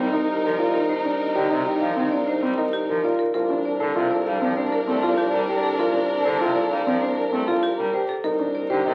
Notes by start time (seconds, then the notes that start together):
Already playing: C2 C4 D#4 A#4
0.02 D#4
0.12 D#4 A#4
0.28 G4
0.34 D#4
0.44 F3 A#4
0.58 F4 D5
0.66 D#4
0.74 A#4
0.89 D#4 C5
0.98 D#4
1.04 D4
1.20 D#5
1.29 D#4
1.35 D3 G4 D5
1.50 C3 D#4
1.61 D#4
1.65 G4 D#5
1.81 F3 F5
1.93 D#3 C4 D#4
2.12 D4 D5
2.24 D#4 C5
2.42 G3 C4
2.56 D#4 A#4
2.73 G4
2.87 F3 D#4 A#4
3.04 F4 D5
3.19 A#4
3.34 C2 D4 F4 A#4
3.50 D4
3.65 D4 D5
3.80 D3 A4 C5
3.96 C3 D4 F4
4.11 A4 D5
4.26 G3 D4 F5
4.41 F3 C4
4.57 D4 C5
4.72 A#4
4.87 A3 C4
4.93 D4
5.03 F4 A4
5.18 G4
5.24 D4
5.33 G3 A#4
5.49 G4 C5
5.56 D4
5.63 A4
5.79 F4 A#4
5.87 D4
5.94 D4
6.10 D5
6.19 D4
6.25 D3 A4 C5
6.41 C3 F4
6.51 D4
6.55 A4 D5
6.71 G3 F5
6.82 D4
6.87 F3 C4
7.02 D4 C5
7.14 D4 A#4
7.32 A3 C4
7.46 D4 F4 A4
7.63 G4
7.77 G3 D4 A#4
7.93 G4 C5
8.09 A4
8.24 C2 D#4 A#4
8.39 D4
8.55 D#4 D5
8.70 D3 G4 C5
8.85 C3 D#4